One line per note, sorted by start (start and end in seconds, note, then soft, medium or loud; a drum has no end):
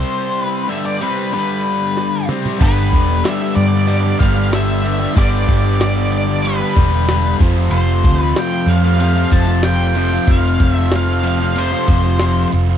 0.00 0.69 C3 medium
0.00 0.68 G3 medium
0.00 0.69 C4 medium
0.00 0.41 C5 medium
0.41 0.73 B4 medium
0.68 1.00 G2 medium
0.68 1.00 D3 medium
0.68 1.00 G3 medium
0.68 0.85 E5 medium
0.86 1.02 D5 medium
1.01 1.32 C3 medium
1.01 1.32 G3 medium
1.01 1.33 C4 medium
1.01 1.32 B4 medium
1.34 2.29 G2 medium
1.34 2.29 D3 medium
1.34 2.28 G3 medium
1.34 2.26 B4 medium
1.97 snare medium
2.29 2.60 C3 medium
2.29 2.61 G3 medium
2.29 2.61 C4 medium
2.29 mid tom medium
2.45 floor tom medium
2.60 2.93 G1 loud
2.60 3.86 G2 medium
2.60 3.24 G2 medium
2.60 3.87 D3 loud
2.60 3.24 D3 loud
2.60 3.88 G3 loud
2.60 2.93 G3 loud
2.60 2.94 B3 loud
2.60 2.94 D4 medium
2.60 2.94 G4 loud
2.60 3.28 B4 medium
2.60 kick loud
2.60 crash loud
2.60 ride loud
2.93 3.22 E1 loud
2.93 3.10 G3 medium
2.93 3.09 B3 medium
2.93 3.09 D4 medium
2.93 3.08 G4 medium
2.93 kick medium
2.93 ride medium
3.08 3.25 G3 medium
3.08 3.25 B3 medium
3.08 3.26 D4 medium
3.08 3.26 G4 medium
3.24 3.73 G2 loud
3.24 3.73 D3 medium
3.24 3.41 G3 medium
3.24 3.40 B3 medium
3.24 3.40 D4 loud
3.24 3.39 G4 loud
3.24 3.55 E5 loud
3.24 snare loud
3.24 ride loud
3.40 3.74 G3 medium
3.40 3.73 B3 medium
3.40 3.73 D4 medium
3.40 3.73 G4 medium
3.56 4.13 G2 medium
3.56 3.87 D5 medium
3.56 ride medium
3.74 4.05 G3 medium
3.74 4.04 B3 medium
3.74 4.04 D4 medium
3.74 4.03 G4 medium
3.87 5.14 G2 medium
3.87 5.15 D3 medium
3.87 5.15 G3 medium
3.87 4.19 D5 medium
3.87 ride medium
4.04 4.19 G3 medium
4.04 4.20 B3 medium
4.04 4.21 D4 medium
4.04 4.21 G4 medium
4.19 5.06 G1 medium
4.19 4.49 G2 medium
4.19 4.51 D3 medium
4.19 4.37 G3 medium
4.19 4.36 B3 medium
4.19 4.35 D4 medium
4.19 4.34 G4 medium
4.19 4.53 F5 loud
4.19 kick medium
4.19 ride medium
4.36 4.51 G3 medium
4.36 4.52 B3 medium
4.36 4.52 D4 medium
4.36 4.52 G4 medium
4.52 5.14 G2 medium
4.52 5.15 D3 medium
4.52 4.82 G3 loud
4.52 4.83 B3 loud
4.52 4.84 D4 loud
4.52 4.84 G4 loud
4.52 5.13 E5 loud
4.52 snare loud
4.52 ride loud
4.83 5.00 G3 medium
4.83 4.99 B3 medium
4.83 4.99 D4 medium
4.83 4.98 G4 medium
4.83 ride medium
4.99 5.15 G3 medium
4.99 5.15 B3 medium
4.99 5.16 D4 medium
4.99 5.17 G4 medium
5.15 5.45 G1 loud
5.15 6.42 G2 loud
5.15 5.79 G2 medium
5.15 6.42 D3 loud
5.15 5.79 D3 medium
5.15 5.47 G3 loud
5.15 6.43 G3 loud
5.15 5.47 B3 loud
5.15 5.47 D4 loud
5.15 5.48 G4 medium
5.15 5.80 D5 medium
5.15 kick loud
5.15 ride loud
5.48 6.62 G1 medium
5.48 5.65 G3 medium
5.48 5.65 B3 medium
5.48 5.64 D4 medium
5.48 5.64 G4 medium
5.48 kick medium
5.48 ride medium
5.65 5.80 G3 medium
5.65 5.80 B3 medium
5.65 5.80 D4 medium
5.65 5.81 G4 medium
5.80 6.28 G2 medium
5.80 6.29 D3 medium
5.80 5.97 G3 loud
5.80 5.96 B3 loud
5.80 5.96 D4 medium
5.80 5.95 G4 loud
5.80 6.11 D5 loud
5.80 snare loud
5.80 ride loud
5.96 6.28 G3 medium
5.96 6.28 B3 medium
5.96 6.27 D4 medium
5.96 6.26 G4 medium
6.12 6.45 D5 medium
6.12 ride medium
6.27 6.61 G3 medium
6.27 6.61 B3 medium
6.27 6.60 D4 medium
6.27 6.59 G4 medium
6.42 7.39 G2 medium
6.42 7.39 D3 medium
6.42 7.35 B4 medium
6.42 ride loud
6.47 7.40 G3 medium
6.60 6.74 G3 medium
6.60 6.75 B3 medium
6.60 6.75 D4 medium
6.60 6.76 G4 medium
6.75 7.33 E1 medium
6.75 7.06 G2 medium
6.75 7.07 D3 medium
6.75 6.93 G3 medium
6.75 6.93 B3 medium
6.75 6.92 D4 medium
6.75 6.91 G4 medium
6.75 kick medium
6.75 ride medium
6.92 7.08 G3 medium
6.92 7.08 B3 medium
6.92 7.09 D4 medium
6.92 7.09 G4 medium
7.09 7.39 G2 loud
7.09 7.39 D3 medium
7.09 7.39 G3 loud
7.09 7.39 B3 medium
7.09 7.39 D4 loud
7.09 7.40 G4 loud
7.09 snare loud
7.09 ride loud
7.40 7.69 F1 medium
7.40 7.70 F2 medium
7.40 8.70 F2 medium
7.40 7.70 C3 loud
7.40 8.67 C3 medium
7.40 7.58 F3 loud
7.40 8.68 F3 loud
7.40 7.57 A3 loud
7.40 7.57 C4 loud
7.40 7.56 F4 loud
7.40 kick loud
7.40 ride medium
7.56 7.71 F3 medium
7.56 7.72 A3 medium
7.56 7.72 C4 medium
7.56 7.72 F4 medium
7.71 8.06 F1 loud
7.71 8.36 F2 medium
7.71 8.35 C3 medium
7.71 8.04 F3 medium
7.71 8.04 A3 loud
7.71 8.05 C4 loud
7.71 8.06 F4 loud
7.71 8.18 C5 medium
7.71 crash loud
8.04 8.33 D2 loud
8.04 8.22 F3 medium
8.04 8.21 A3 medium
8.04 8.20 C4 medium
8.04 8.20 F4 medium
8.04 kick medium
8.04 ride medium
8.18 8.37 F3 medium
8.18 8.37 A3 medium
8.18 8.37 C4 medium
8.18 8.38 F4 medium
8.18 8.38 B4 medium
8.36 9.63 F2 loud
8.36 8.85 C3 loud
8.36 8.53 F3 loud
8.36 8.52 A3 loud
8.36 8.52 C4 loud
8.36 8.52 F4 loud
8.36 8.71 G5 loud
8.36 snare loud
8.36 ride loud
8.52 8.83 F3 medium
8.52 8.83 A3 medium
8.52 8.83 C4 medium
8.52 8.81 F4 medium
8.66 9.24 F2 medium
8.66 9.95 C3 medium
8.66 9.95 F3 medium
8.66 9.00 F5 loud
8.66 ride medium
8.70 9.95 F2 medium
8.83 9.16 F3 medium
8.83 9.15 A3 medium
8.83 9.14 C4 medium
8.83 9.13 F4 medium
8.99 9.30 F2 medium
8.99 9.31 C3 medium
8.99 9.31 F3 medium
8.99 9.34 F5 loud
8.99 ride medium
9.14 9.30 F3 medium
9.14 9.31 A3 medium
9.14 9.32 C4 medium
9.14 9.33 F4 medium
9.31 10.17 F1 medium
9.31 9.93 F2 medium
9.31 9.95 C3 medium
9.31 9.47 F3 medium
9.31 9.47 A3 medium
9.31 9.46 C4 medium
9.31 9.45 F4 medium
9.31 9.62 A5 loud
9.31 kick medium
9.31 ride medium
9.46 9.62 F3 medium
9.46 9.63 A3 medium
9.46 9.64 C4 medium
9.46 9.64 F4 medium
9.63 10.26 F2 loud
9.63 10.27 C3 medium
9.63 9.95 F3 loud
9.63 9.96 A3 medium
9.63 9.96 C4 loud
9.63 9.97 F4 loud
9.63 10.30 G5 loud
9.63 snare loud
9.63 ride loud
9.94 11.53 F2 medium
9.94 11.22 F2 medium
9.94 11.54 C3 loud
9.94 11.22 C3 loud
9.94 10.13 F3 medium
9.94 11.22 F3 loud
9.94 10.12 A3 medium
9.94 10.12 C4 medium
9.94 10.11 F4 medium
9.94 ride medium
10.12 10.27 F3 medium
10.12 10.28 A3 medium
10.12 10.28 C4 medium
10.12 10.28 F4 medium
10.27 10.56 F1 loud
10.27 10.91 F2 loud
10.27 10.91 C3 medium
10.27 10.59 F3 loud
10.27 10.60 A3 loud
10.27 10.60 C4 loud
10.27 10.61 F4 loud
10.27 10.73 F5 loud
10.27 kick loud
10.27 ride loud
10.60 11.73 F1 medium
10.60 10.77 F3 medium
10.60 10.76 A3 medium
10.60 10.75 C4 medium
10.60 10.75 F4 medium
10.60 kick medium
10.60 ride medium
10.73 10.91 A3 medium
10.73 10.92 C4 medium
10.73 10.92 F4 medium
10.73 10.90 E5 loud
10.78 10.91 F3 medium
10.92 11.40 F2 loud
10.92 11.40 C3 loud
10.92 11.08 F3 loud
10.92 11.07 A3 medium
10.92 11.07 C4 loud
10.92 11.06 F4 loud
10.92 snare loud
10.92 ride loud
10.96 11.26 F5 loud
11.07 11.40 F3 medium
11.07 11.39 A3 medium
11.07 11.39 C4 medium
11.07 11.39 F4 medium
11.23 12.50 F2 medium
11.23 12.50 C3 medium
11.23 12.50 F3 medium
11.23 ride medium
11.28 11.59 F5 medium
11.40 11.72 F3 medium
11.40 11.71 A3 medium
11.40 11.71 C4 medium
11.40 11.70 F4 medium
11.55 11.86 F2 medium
11.55 11.86 C3 medium
11.55 11.86 F3 medium
11.55 12.49 C5 medium
11.55 ride loud
11.71 11.86 F3 medium
11.71 11.87 A3 medium
11.71 11.87 C4 medium
11.71 11.88 F4 medium
11.87 12.45 F1 medium
11.87 12.51 F2 medium
11.87 12.50 C3 medium
11.87 12.04 F3 medium
11.87 12.04 A3 medium
11.87 12.03 C4 medium
11.87 12.02 F4 medium
11.87 kick medium
11.87 ride medium
12.03 12.18 F3 medium
12.03 12.19 A3 medium
12.03 12.20 C4 medium
12.03 12.20 F4 medium
12.19 12.78 F2 medium
12.19 12.78 C3 medium
12.19 12.50 F3 loud
12.19 12.51 A3 medium
12.19 12.51 C4 loud
12.19 12.52 F4 loud
12.19 snare loud
12.19 ride loud
12.51 12.78 F1 medium
12.51 12.69 F3 medium
12.51 12.69 A3 medium
12.51 12.68 C4 medium
12.51 12.67 F4 medium
12.51 ride medium
12.68 12.78 F3 medium
12.68 12.78 A3 medium
12.68 12.78 C4 medium
12.68 12.78 F4 medium